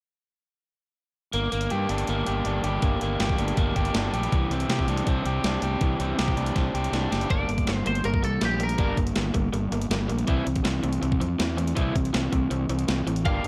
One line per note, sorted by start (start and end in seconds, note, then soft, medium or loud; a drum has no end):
1.33 1.47 G1 medium
1.33 1.51 A#3 medium
1.33 closed hi-hat soft
1.52 1.66 G1 medium
1.52 2.08 A#3 medium
1.52 closed hi-hat soft
1.61 closed hi-hat soft
1.70 1.85 G2 medium
1.70 2.27 G4 medium
1.70 closed hi-hat soft
1.89 2.03 G1 medium
1.89 2.46 D4 medium
1.89 closed hi-hat medium
1.98 closed hi-hat soft
2.07 2.22 G1 medium
2.07 2.82 A#3 medium
2.07 closed hi-hat soft
2.27 2.41 G1 medium
2.27 2.64 G4 medium
2.27 closed hi-hat medium
2.45 2.59 G1 medium
2.45 3.38 D4 medium
2.45 closed hi-hat soft
2.64 2.78 G1 medium
2.64 3.20 G4 medium
2.64 closed hi-hat medium
2.82 2.96 G1 medium
2.82 3.00 A#3 medium
2.82 kick loud
2.82 closed hi-hat soft
3.01 3.16 G1 medium
3.01 3.57 A#3 medium
3.01 closed hi-hat medium
3.20 3.34 G1 medium
3.20 3.76 G4 medium
3.20 snare medium
3.20 closed hi-hat medium
3.29 kick medium
3.38 3.52 G1 medium
3.38 3.94 D4 soft
3.38 closed hi-hat medium
3.48 closed hi-hat soft
3.57 3.71 G1 medium
3.57 4.32 A#3 medium
3.57 kick medium
3.57 closed hi-hat medium
3.76 3.90 G1 medium
3.76 4.13 G4 medium
3.76 kick medium
3.76 closed hi-hat soft
3.85 closed hi-hat soft
3.94 4.08 G1 medium
3.94 4.35 D4 medium
3.94 snare loud
3.94 closed hi-hat soft
4.13 4.27 A#1 medium
4.13 4.70 G4 medium
4.13 closed hi-hat medium
4.23 closed hi-hat soft
4.32 4.46 C2 medium
4.32 5.25 E3 medium
4.32 kick medium
4.32 closed hi-hat soft
4.49 4.64 C2 medium
4.49 5.07 C4 medium
4.49 closed hi-hat soft
4.60 closed hi-hat soft
4.68 4.82 C3 medium
4.68 5.26 G4 medium
4.68 snare medium
4.68 closed hi-hat soft
4.79 kick medium
4.87 5.01 C2 medium
4.87 5.45 D4 medium
4.87 closed hi-hat medium
4.97 closed hi-hat soft
5.07 5.20 C2 medium
5.07 5.99 C4 medium
5.07 kick medium
5.07 closed hi-hat medium
5.25 5.39 C2 medium
5.25 5.62 G4 medium
5.25 closed hi-hat medium
5.44 5.57 C2 medium
5.44 6.35 D4 medium
5.44 snare medium
5.44 closed hi-hat soft
5.62 5.76 C2 medium
5.62 6.17 G4 medium
5.62 closed hi-hat medium
5.81 5.95 C2 medium
5.81 6.75 E3 medium
5.81 kick loud
5.81 closed hi-hat medium
6.00 6.13 C2 medium
6.00 6.54 C4 medium
6.00 closed hi-hat medium
6.18 6.32 C2 medium
6.18 6.73 G4 medium
6.18 snare loud
6.18 closed hi-hat medium
6.28 kick medium
6.36 6.50 C2 medium
6.36 6.92 D4 medium
6.36 closed hi-hat medium
6.46 closed hi-hat soft
6.55 6.69 C2 medium
6.55 7.30 C4 medium
6.55 kick medium
6.55 snare soft
6.55 closed hi-hat soft
6.74 6.88 C2 medium
6.74 7.10 G4 medium
6.74 closed hi-hat medium
6.84 closed hi-hat soft
6.92 7.06 C2 medium
6.92 7.30 D4 medium
6.92 snare medium
6.92 closed hi-hat medium
7.11 7.25 F#1 medium
7.11 7.30 G4 medium
7.11 snare medium
7.11 closed hi-hat medium
7.21 closed hi-hat soft
7.30 7.47 G1 medium
7.30 7.48 G3 medium
7.30 7.48 A#3 medium
7.30 7.48 D4 medium
7.30 7.76 D5 medium
7.30 kick loud
7.30 closed hi-hat medium
7.49 7.65 G1 medium
7.49 7.66 G3 medium
7.49 7.66 A#3 medium
7.49 closed hi-hat medium
7.58 kick medium
7.58 closed hi-hat soft
7.67 7.84 G1 medium
7.67 7.84 G3 medium
7.67 7.84 A#3 medium
7.67 snare medium
7.67 closed hi-hat medium
7.76 7.87 C5 medium
7.86 8.03 G1 medium
7.86 8.03 G3 medium
7.86 8.03 A#3 medium
7.86 8.06 C5 medium
7.86 closed hi-hat medium
7.95 closed hi-hat soft
8.04 8.21 G1 medium
8.04 8.21 G3 medium
8.04 8.22 A#3 medium
8.04 8.22 A#4 medium
8.04 closed hi-hat medium
8.14 kick medium
8.23 8.40 C2 medium
8.23 8.40 G3 medium
8.23 8.40 A#3 medium
8.23 8.43 A4 medium
8.23 closed hi-hat medium
8.41 8.75 A#1 medium
8.41 8.58 G3 medium
8.41 8.59 A#3 medium
8.41 8.63 G4 medium
8.41 snare medium
8.41 closed hi-hat medium
8.60 8.77 G3 medium
8.60 8.77 A#3 medium
8.60 8.99 A#4 medium
8.60 closed hi-hat medium
8.69 closed hi-hat medium
8.78 8.95 G1 medium
8.78 8.96 G3 medium
8.78 8.96 A#3 medium
8.78 8.97 D4 medium
8.78 kick loud
8.78 closed hi-hat medium
8.97 9.14 G1 medium
8.97 9.14 G3 medium
8.97 9.14 A#3 medium
8.97 kick medium
8.97 closed hi-hat soft
9.07 closed hi-hat medium
9.16 9.33 G1 medium
9.16 9.33 G3 medium
9.16 9.33 A#3 medium
9.16 snare medium
9.16 closed hi-hat medium
9.34 9.51 G1 medium
9.34 9.51 G3 medium
9.34 9.51 A#3 medium
9.34 kick medium
9.34 closed hi-hat medium
9.53 9.70 G1 medium
9.53 9.70 G3 medium
9.53 9.70 A#3 medium
9.53 closed hi-hat medium
9.71 9.88 G1 medium
9.71 9.89 G3 medium
9.71 9.89 A#3 medium
9.71 closed hi-hat medium
9.82 closed hi-hat medium
9.90 10.07 G1 medium
9.90 10.07 G3 medium
9.90 10.08 A#3 medium
9.90 snare medium
9.90 closed hi-hat soft
10.08 10.26 A#1 medium
10.08 10.26 G3 medium
10.08 10.26 A#3 medium
10.08 closed hi-hat medium
10.19 closed hi-hat soft
10.27 10.44 C2 medium
10.27 10.44 E3 medium
10.27 10.45 C4 medium
10.27 10.46 E4 medium
10.27 kick medium
10.27 closed hi-hat medium
10.45 10.63 C2 medium
10.45 10.63 E3 medium
10.45 10.63 C4 medium
10.45 closed hi-hat medium
10.56 kick medium
10.56 closed hi-hat soft
10.64 10.81 C2 medium
10.64 10.81 E3 medium
10.64 10.81 C4 medium
10.64 snare loud
10.64 closed hi-hat medium
10.83 11.00 C2 medium
10.83 11.00 E3 medium
10.83 11.00 C4 medium
10.83 closed hi-hat medium
10.93 closed hi-hat soft
11.02 11.19 C2 medium
11.02 11.19 E3 medium
11.02 11.19 C4 medium
11.02 closed hi-hat soft
11.12 kick medium
11.20 11.37 F2 medium
11.20 11.37 E3 medium
11.20 11.37 C4 medium
11.20 closed hi-hat medium
11.38 11.72 E2 medium
11.38 11.56 E3 medium
11.38 11.56 C4 medium
11.38 snare loud
11.38 closed hi-hat medium
11.57 11.74 E3 medium
11.57 11.75 C4 medium
11.57 closed hi-hat medium
11.68 closed hi-hat medium
11.75 11.93 C2 medium
11.75 11.94 E3 medium
11.75 11.94 C4 medium
11.75 11.94 E4 medium
11.75 kick medium
11.75 closed hi-hat medium
11.95 12.12 C2 medium
11.95 12.12 E3 medium
11.95 12.12 C4 medium
11.95 kick medium
11.95 closed hi-hat medium
12.05 closed hi-hat soft
12.13 12.31 C2 medium
12.13 12.30 E3 medium
12.13 12.31 C4 medium
12.13 snare medium
12.13 closed hi-hat medium
12.32 12.49 C2 medium
12.32 12.49 E3 medium
12.32 12.49 C4 medium
12.32 kick medium
12.32 closed hi-hat medium
12.51 12.67 C2 medium
12.51 12.68 E3 medium
12.51 12.68 C4 medium
12.51 closed hi-hat medium
12.69 12.86 C2 medium
12.69 12.86 E3 medium
12.69 12.87 C4 medium
12.69 closed hi-hat medium
12.79 closed hi-hat soft
12.88 13.05 C2 medium
12.88 13.05 E3 medium
12.88 13.05 C4 medium
12.88 snare medium
12.88 closed hi-hat soft
13.06 13.23 A1 medium
13.06 13.24 E3 medium
13.06 13.24 C4 medium
13.06 closed hi-hat soft
13.16 closed hi-hat soft
13.25 13.42 G1 medium
13.25 13.43 A#3 medium
13.25 13.43 D4 medium
13.25 13.43 G4 medium
13.25 13.48 F5 medium
13.25 kick loud
13.25 closed hi-hat soft
13.44 13.48 G1 medium
13.44 13.48 A#3 medium
13.44 closed hi-hat soft